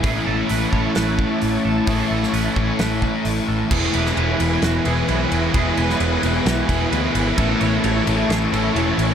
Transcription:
<<
  \new Staff \with { instrumentName = "Analog synth pad" } { \time 4/4 \key e \major \tempo 4 = 131 << { <cis'' a''>1~ | <cis'' a''>1 | <b' gis''>1~ | <b' gis''>1 |
<cis'' a''>1 | } \\ { e'1~ | e'1 | e'1~ | e'1~ |
e'1 | } >> }
  \new Staff \with { instrumentName = "Clean electric guitar" } { \time 4/4 \key e \major gis'8 a'8 b'8 cis''8 b'4 r8 a'8 | gis'8 a'8 b'8 cis''8 b'4 r8 a'8 | gis'8 b'8 b'4 fis'8 gis'8 b'4 | gis'8 b'8 b'4 fis'8 gis'8 b'4 |
a'8 cis''8 cis''4 gis'8 a'8 cis''4 | }
  \new Staff \with { instrumentName = "Overdriven electric guitar" } { \time 4/4 \key e \major <a, e a cis' e'>1 | <a, e a cis' e'>1 | <e gis b e'>2~ <e gis b e'>8 <e gis b e'>8 <e gis b e'>4 | <e gis b e'>2~ <e gis b e'>8 <e gis b e'>8 <e gis b e'>4 |
<a, e a cis' e'>2~ <a, e a cis' e'>8 <a, e a cis' e'>8 <a, e a cis' e'>4 | }
  \new Staff \with { instrumentName = "Distorted electric guitar" } { \clef bass \time 4/4 \key e \major <a, e a>1 | <a, e a>1 | <e, b, e>4. <e, b, e>2~ <e, b, e>8 | <e, b, e>4. <e, b, e>2~ <e, b, e>8 |
<a, e a>4. <a, e a>2~ <a, e a>8 | }
  \new Staff \with { instrumentName = "Picked electric bass" } { \clef bass \time 4/4 \key e \major a,,8 a,,8 a,,8 a,,8 a,,4 a,,8 a,,8 | a,,8 a,,8 a,,8 a,,8 a,,4 a,,8 a,,8 | e,,8 e,,8 e,,8 e,,8 e,,8 e,,8 b,,8 e,,8 | e,,8 e,,8 e,,8 e,,8 b,,8 e,,8 d,8 gis,,8 |
a,,8 a,,8 a,,8 a,,8 a,,8 a,,8 e,,8 a,,8 | }
  \new DrumStaff \with { instrumentName = "Drums" } \drummode { \time 4/4 <hho bd>4 hho8 bd8 <hho sn>8 bd8 hho4 | <hho bd>8. sn16 hho8 bd8 <hho sn>8 bd8 hho4 | <cymc bd>8 cymr16 sn16 cymr8 cymr8 <cymr sn>8 cymr8 cymr8 cymr8 | <bd cymr>8 cymr16 sn16 cymr8 cymr8 <cymr sn>8 <bd cymr>8 cymr8 cymr8 |
<bd cymr>8 cymr8 cymr8 cymr8 <cymr sn>8 cymr8 cymr8 cymr8 | }
>>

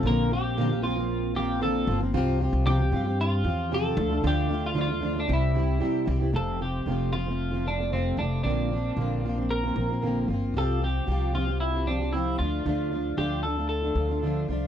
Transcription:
<<
  \new Staff \with { instrumentName = "Clean electric guitar" } { \time 4/4 \key f \major \tempo 4 = 114 bes'8 g'4 f'4 g'8 a'8. r16 | r4 g'4 f'4 a'4 | g'8. f'16 f'8. d'16 e'4. r8 | a'8 g'4 f'4 d'8 c'8 d'8 |
d'2 bes'4. r8 | a'8 g'4 f'8 e'8 d'8 e'8 f'8~ | f'4 g'8 a'8 a'4. r8 | }
  \new Staff \with { instrumentName = "Steel-string acoustic guitar" } { \time 4/4 \key f \major <bes, d f bes c' f'>8 <f bes c' f'>8 <bes, d f bes c' f'>16 <f bes c' f'>16 <f bes c' f'>16 <f bes c' f'>8. <f bes c' f'>8 <bes, d f bes c' f'>8 <f bes c' f'>16 <f bes c' f'>16 | <c f c' f' g'>8 <f c' f' g'>8 <c f c' f' g'>16 <c' f' g'>16 <f c' f' g'>16 <c' f' g'>8. <f c' f' g'>8 <c f c' f' g'>8 <f a d' f'>16 <a d' f'>16 | <d f a d' f'>8 <f a d' f'>8 <d f a d' f'>16 <a d' f'>16 <f a d' f'>16 <a d' f'>16 <c g c' e' g'>8 <g c' e' g'>8 <c g c' e' g'>8 <g c' e' g'>16 <c' e' g'>16 | <f, c f a c' f'>8 <f a c' f'>8 <f, c f a c' f'>8 <f a c' f'>16 <f a c' f'>8 <f a c' f'>16 <f a c' f'>16 <f a c' f'>16 <f, c f a c' f'>8 <f a c' f'>8 |
<bes, d f bes c' f'>8 <f bes c' f'>8 <bes, d f bes c' f'>8 <f bes c' f'>16 <f bes c' f'>8 <f bes c' f'>16 <f bes c' f'>16 <f bes c' f'>16 <bes, d f bes c' f'>8 <f bes c' f'>8 | <c f c' f' g'>8 <f c' f' g'>8 <c f c' f' g'>8 <f c' f' g'>16 <c' f' g'>8 <c' f' g'>16 <f c' f' g'>16 <c' f' g'>16 <c f c' f' g'>8 <f a d' f'>8 | <d f a d' f'>8 <f a d' f'>8 <d f a d' f'>8 <f a d' f'>16 <a d' f'>8 <a d' f'>16 <f a d' f'>16 <a d' f'>16 <d f a d' f'>8 <f a d' f'>8 | }
  \new Staff \with { instrumentName = "Upright bass" } { \clef bass \time 4/4 \key f \major bes,,2.~ bes,,8 g,,8 | c,8. c,8. g,4 e,4 d,8 | d,2 c,4 r8 c,8 | f,,4 f,,2~ f,,8 f,,8 |
bes,,4 bes,,4. bes,,4 g,,8 | c,4 c,2~ c,8 d,8 | d,4 d,4. d,4 c,8 | }
>>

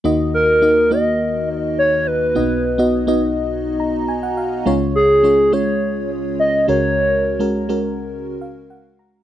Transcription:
<<
  \new Staff \with { instrumentName = "Soft synth lead" } { \time 4/4 \key ees \minor \tempo 4 = 104 r8 bes'4 ees''4 r8 des''8 ces''8~ | ces''4. r2 r8 | r8 aes'4 des''4 r8 ees''8 des''8~ | des''4. r2 r8 | }
  \new Staff \with { instrumentName = "FM electric piano" } { \time 4/4 \key ees \minor << { r1 | r2 r8 bes''8 aes''16 ges''16 f''8 | r1 | r2 r8 f''8 ges''8 bes''8 | } \\ { <bes ees' ges' ees''>4 <bes ees' ges' ees''>8 <bes ees' ges' ees''>4.~ <bes ees' ges' ees''>16 r8. | <ces' ees' ges' ees''>8. <ces' ees' ges' ees''>8 <ces' ees' ges' ees''>4.~ <ces' ees' ges' ees''>16 r4 | <aes des' f' des''>4 <aes des' f' des''>8 <aes des' f' des''>4.~ <aes des' f' des''>16 r16 <aes des' ges' bes'>8~ | <aes des' ges' bes'>8. <aes des' ges' bes'>8 <aes des' ges' bes'>4.~ <aes des' ges' bes'>16 r4 | } >> }
  \new Staff \with { instrumentName = "FM electric piano" } { \clef bass \time 4/4 \key ees \minor <ees, ees>1 | <ces, ces>1 | <des, des>2.~ <des, des>8 <des, des>8~ | <des, des>2.~ <des, des>8 r8 | }
>>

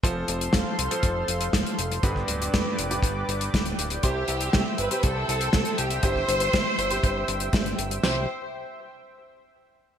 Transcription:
<<
  \new Staff \with { instrumentName = "Analog synth pad" } { \time 4/4 \key c \major \tempo 4 = 120 << { <a' c'' c'''>1 | <b' d'' d'''>1 | <c'' e'' e'''>1~ | <c'' e'' e'''>1 |
<c'' e'' g''>8 r2. r8 | } \\ { f''1 | g''1~ | g''1~ | g''1 |
r1 | } >> }
  \new Staff \with { instrumentName = "Violin section" } { \time 4/4 \key c \major r1 | r1 | g'4. b'8 a'4. g'8 | c''2.~ c''8 r8 |
c''8 r2. r8 | }
  \new Staff \with { instrumentName = "Grand piano" } { \time 4/4 \key c \major <f c' f' a' c''>4.~ <f c' f' a' c''>16 <f c' f' a' c''>2~ <f c' f' a' c''>16 | <g, b d' g' b'>4.~ <g, b d' g' b'>16 <g, b d' g' b'>2~ <g, b d' g' b'>16 | <c c' e' g' c''>4.~ <c c' e' g' c''>16 <c c' e' g' c''>2~ <c c' e' g' c''>16 | <c c' e' g' c''>4.~ <c c' e' g' c''>16 <c c' e' g' c''>2~ <c c' e' g' c''>16 |
<c' e' g' c''>8 r2. r8 | }
  \new Staff \with { instrumentName = "Analog synth bass" } { \clef bass \time 4/4 \key c \major f,,8 f,,8 f,,8 c,8 f,,8 f,,8 f,,8 f,,8 | g,,8 d,,8 f,,8 f,,8 g,,8 g,,8 d,,8 d,,8 | c,8 c,8 c,8 g,,8 c,8 c,8 c,8 c,8 | g,,8 g,,8 g,,8 g,,8 g,,8 g,,8 g,,8 g,,8 |
c,8 r2. r8 | }
  \new DrumStaff \with { instrumentName = "Drums" } \drummode { \time 4/4 <hh bd>8 hh16 hh16 <hh bd sn>8 hh16 hh16 <hh bd>8 hh16 hh16 <hh bd sn>16 hh16 hh16 hh16 | <hh bd>16 bd16 hh16 hh16 <hh bd sn>8 hh16 hh16 <hh bd>8 hh16 hh16 <hh bd sn>16 hh16 hh16 hh16 | <hh bd>8 hh16 hh16 <hh bd sn>8 hh16 hh16 <hh bd>8 hh16 hh16 <hh bd sn>16 hh16 hh16 hh16 | <hh bd>16 bd16 hh16 hh16 <hh bd sn>8 hh16 hh16 <hh bd>8 hh16 hh16 <hh bd sn>16 hh16 hh16 hh16 |
<cymc sn>4 r4 r4 r4 | }
>>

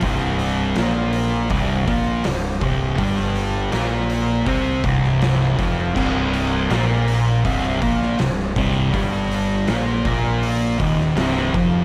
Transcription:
<<
  \new Staff \with { instrumentName = "Distorted electric guitar" } { \clef bass \time 4/4 \key c \minor \tempo 4 = 81 <c, c>4 <bes, bes>4 <c, c>8 <bes, bes>8 c,8 <c, c>8 | <g, g>4 <bes, bes>4 <c c'>8 <c, c>4 <f, f>8 | <c, c>4 <bes, bes>4 <c, c>8 <bes, bes>8 c,8 <c, c>8 | <g, g>4 <bes, bes>8 <bes, bes>4 <ees, ees>8 <c, c>8 <f, f>8 | }
  \new Staff \with { instrumentName = "Fingered electric bass" } { \clef bass \time 4/4 \key c \minor c,,4 bes,,4 c,,8 bes,,8 c,,8 c,,8 | g,,4 bes,,4 c,8 c,,4 f,,8 | c,,4 bes,,4 c,,8 bes,,8 c,,8 c,,8 | g,,4 bes,,8 bes,,4 ees,,8 c,,8 f,,8 | }
  \new DrumStaff \with { instrumentName = "Drums" } \drummode { \time 4/4 <hho bd>8 hho8 <hho sn>8 hho8 <hho bd>8 <hho bd>8 <hho sn>8 <hho bd>8 | <hho bd>16 sn16 hho8 <hho sn>8 hho8 <hho bd>8 <hho bd>16 sn16 <hho sn>16 sn16 <hho bd>8 | <cymc bd>8 hho8 <hho sn>8 hho8 <hho bd>8 <hho bd>16 sn16 <hho sn>16 sn16 <hho bd>8 | <hho bd>8 hho8 <hho sn>8 <hho bd>8 hho8 <hho bd>16 sn16 <hho sn>16 sn16 <hho bd>8 | }
>>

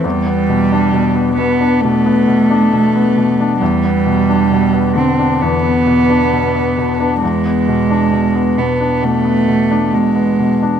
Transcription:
<<
  \new Staff \with { instrumentName = "Cello" } { \time 4/4 \key e \minor \tempo 4 = 67 g4. b8 a2 | g4. c'8 b2 | gis4. b8 a4 gis4 | }
  \new Staff \with { instrumentName = "Grand piano" } { \clef bass \time 4/4 \key e \minor e,16 b16 b,16 d'16 b,16 b16 b,16 d'16 b,16 b16 b,16 d'16 b,16 b16 b,16 d'16 | e,16 b16 b,16 d'16 b,16 b16 d16 d'16 e,16 b16 b,16 d'16 b,16 b16 b,16 d'16 | e,16 b16 b,16 d'16 b,16 b16 b,16 d'16 b,16 b16 b,16 d'16 b,16 b16 b,16 d'16 | }
>>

